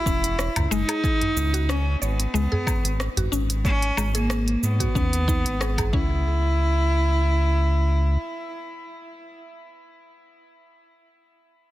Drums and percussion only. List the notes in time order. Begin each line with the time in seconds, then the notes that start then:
0.06 kick, shaker
0.24 closed hi-hat, shaker
0.39 cross-stick, shaker
0.56 closed hi-hat, udu, low woodblock, shaker
0.72 shaker
0.89 closed hi-hat, low woodblock, shaker
1.04 kick, shaker
1.21 closed hi-hat, udu
1.37 shaker
1.54 closed hi-hat, shaker
1.69 cross-stick, shaker
2.03 shaker
2.20 closed hi-hat, shaker
2.35 shaker
2.52 udu
2.67 kick, low woodblock, shaker
2.85 closed hi-hat, shaker
3.00 cross-stick, shaker
3.16 closed hi-hat, udu, shaker
3.33 shaker
3.50 closed hi-hat, shaker
3.65 kick, shaker
3.82 closed hi-hat
3.97 low woodblock, shaker
4.15 closed hi-hat, shaker
4.30 cross-stick, shaker
4.48 closed hi-hat
4.63 shaker
4.80 kick, closed hi-hat, shaker
4.95 kick, shaker
5.13 closed hi-hat, shaker
5.28 kick, shaker
5.46 closed hi-hat, shaker
5.61 cross-stick, shaker
5.78 kick, closed hi-hat, udu, low woodblock, shaker
5.93 kick